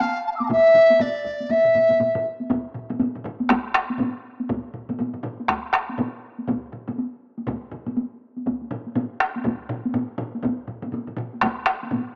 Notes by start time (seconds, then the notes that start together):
0.00 F5, taiko high
0.26 A5
0.31 F5
0.35 D6 E6
0.40 A#5, taiko high
0.46 F5 A5, taiko mid
0.50 E5, taiko, taiko low-mid, taiko high
0.74 taiko low-mid, taiko mid
0.90 taiko high
0.99 D5, taiko low-mid, taiko mid, taiko high
1.25 taiko
1.40 taiko high
1.49 E5, taiko low-mid, taiko mid, taiko high
1.65 taiko low-mid, taiko mid
1.75 taiko low-mid, taiko mid, taiko high
1.90 taiko low-mid, taiko mid, taiko high
2.00 taiko low-mid, taiko mid, taiko high
2.15 taiko low-mid, taiko mid
2.40 taiko high
2.50 taiko, taiko low-mid, taiko mid, taiko high
2.75 taiko low-mid, taiko mid
2.90 taiko low-mid, taiko mid, taiko high
3.00 taiko low-mid, taiko mid, taiko high
3.15 taiko low-mid, taiko mid
3.24 taiko low-mid, taiko mid
3.40 taiko high
3.49 taiko rim, taiko, taiko high
3.75 taiko rim
3.90 taiko high
3.99 taiko low-mid, taiko mid, taiko high
4.40 taiko high
4.49 taiko, taiko low-mid, taiko mid, taiko high
4.74 taiko low-mid, taiko mid
4.89 taiko low-mid, taiko mid, taiko high
4.99 taiko low-mid, taiko mid, taiko high
5.14 taiko low-mid, taiko mid
5.23 taiko low-mid, taiko mid
5.40 taiko high
5.48 taiko rim, taiko, taiko high
5.73 taiko rim
5.89 taiko high
5.98 taiko low-mid, taiko mid, taiko high
6.39 taiko high
6.48 taiko, taiko low-mid, taiko mid, taiko high
6.72 taiko low-mid, taiko mid
6.88 taiko low-mid, taiko mid, taiko high
6.98 taiko high
7.38 taiko high
7.47 taiko, taiko low-mid, taiko mid, taiko high
7.72 taiko low-mid, taiko mid
7.86 taiko low-mid, taiko mid, taiko high
7.97 taiko high
8.36 taiko high
8.46 taiko, taiko high
8.61 taiko high
8.71 taiko low-mid, taiko mid
8.86 taiko high
8.95 taiko low-mid, taiko mid, taiko high
9.20 taiko rim
9.36 taiko high
9.44 taiko, taiko low-mid, taiko mid, taiko high
9.69 taiko low-mid, taiko mid
9.85 taiko high
9.94 taiko low-mid, taiko mid, taiko high
10.18 taiko low-mid, taiko mid
10.35 taiko high
10.43 taiko, taiko low-mid, taiko mid, taiko high
10.67 taiko low-mid, taiko mid
10.82 taiko low-mid, taiko mid, taiko high
10.92 taiko low-mid, taiko mid, taiko high
11.07 taiko low-mid, taiko mid
11.17 taiko low-mid, taiko mid
11.33 taiko high
11.42 taiko rim, taiko, taiko high
11.66 taiko rim
11.83 taiko high
11.91 taiko low-mid, taiko mid, taiko high